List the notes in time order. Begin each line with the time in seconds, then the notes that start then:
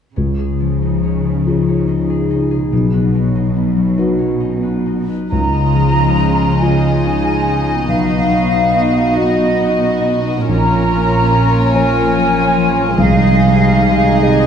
0.14 C#2 C#3
0.39 G#4
0.60 F3
0.82 D#4
1.03 C#4
1.25 F3
1.46 D#4 F4 G#4
1.68 C#4
1.88 D#4
2.10 G#4
2.30 D#4
2.51 G#4
2.72 B1 B2
2.93 B4
3.15 F#3
3.35 D#4
3.56 B3
3.77 F#3
3.98 D#4 F#4 B4
4.19 C#4
4.40 D#4
4.63 B4
4.86 D#4
5.09 B4
5.30 C#2 C#3 G#3 D#4 F4 D#5 A#5
5.74 F3
6.18 D#4
6.60 C#4 F4 D#5 G#5
7.03 D#4
7.45 C#4
7.87 B1 B2 B3 F#4 F5
8.29 F#3
8.73 D#4
9.15 B3 F#4 D#5
9.59 C#4
10.05 B3
10.49 A#1 A#2 C#4 F4 A#4 C#5 A#5
10.92 A#3
11.34 F4
11.73 F3 A#4 C#5 G#5
12.16 F#3
12.56 F3
12.97 C2 C3 D#3 G#3 D#4 G#4 D#5 F5
13.40 G#3
13.82 G#4
14.22 C4 G#4 D#5